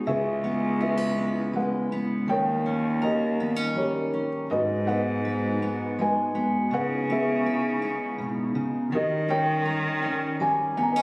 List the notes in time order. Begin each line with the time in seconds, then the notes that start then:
Already playing: B3 G#4
0.06 C#2 C#3 G#3 C#4 E4 G#4 B4 E5
0.44 B3
0.80 G#4 B4 E5
0.97 B4
1.18 B3
1.53 G#3 B4 F#5
1.92 B3
2.28 D#2 D#3 G3 C#4 D#4 A#4 C#5 G5
2.66 C#4
3.02 G4 A#4 D#5
3.40 B3
3.56 C#4
3.75 G3 G4 A#4 C#5
4.14 C#4
4.50 G#2 G#3 F#4 B4 D#5
4.87 B3 B4 D#5 F#5
5.25 B4
5.62 B3
5.99 G#3 B4 D#5 G#5
6.35 B3
6.71 C#3 B3 E4 B4 F#5
7.10 B3 G#4 B4 E5
7.46 B4
7.82 B3
8.18 B2
8.55 C#3
8.92 D#3 G3 C#4 G4 A#4 D#5
9.29 C#4 A#4 C#5 G5
9.65 A#4
10.03 C#4
10.40 G3 G#5
10.77 B3 G#5
10.83 A#5
10.92 B4 D#5 G#5
10.96 C#4